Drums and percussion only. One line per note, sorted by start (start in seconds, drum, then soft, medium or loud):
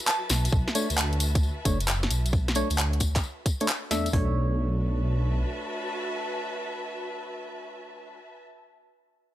0.00 tambourine medium
0.07 clap loud
0.07 tambourine soft
0.29 snare medium
0.29 open hi-hat medium
0.29 tambourine loud
0.45 closed hi-hat medium
0.45 tambourine medium
0.52 kick loud
0.52 tambourine soft
0.68 snare medium
0.75 open hi-hat loud
0.75 tambourine medium
0.90 closed hi-hat medium
0.90 tambourine medium
0.98 clap loud
0.98 tambourine soft
1.13 closed hi-hat soft
1.20 open hi-hat medium
1.20 tambourine loud
1.35 kick loud
1.35 closed hi-hat medium
1.35 tambourine medium
1.43 tambourine soft
1.65 kick loud
1.65 open hi-hat loud
1.65 tambourine medium
1.80 closed hi-hat medium
1.80 tambourine soft
1.88 clap loud
1.88 tambourine soft
2.03 snare medium
2.11 open hi-hat medium
2.11 tambourine medium
2.26 closed hi-hat medium
2.26 tambourine medium
2.33 kick loud
2.33 tambourine soft
2.48 snare medium
2.48 closed hi-hat soft
2.55 open hi-hat medium
2.55 tambourine medium
2.70 closed hi-hat medium
2.70 tambourine soft
2.78 clap loud
2.78 tambourine soft
2.93 closed hi-hat soft
3.00 kick medium
3.00 open hi-hat medium
3.00 tambourine loud
3.16 kick loud
3.16 clap medium
3.16 closed hi-hat medium
3.16 tambourine soft
3.24 tambourine soft
3.46 kick loud
3.46 open hi-hat medium
3.46 tambourine medium
3.60 closed hi-hat medium
3.60 tambourine soft
3.68 clap loud
3.68 tambourine soft
3.91 snare medium
3.91 open hi-hat medium
3.91 tambourine loud
4.06 closed hi-hat medium
4.06 tambourine soft
4.13 kick loud
4.13 floor tom loud
4.13 open hi-hat medium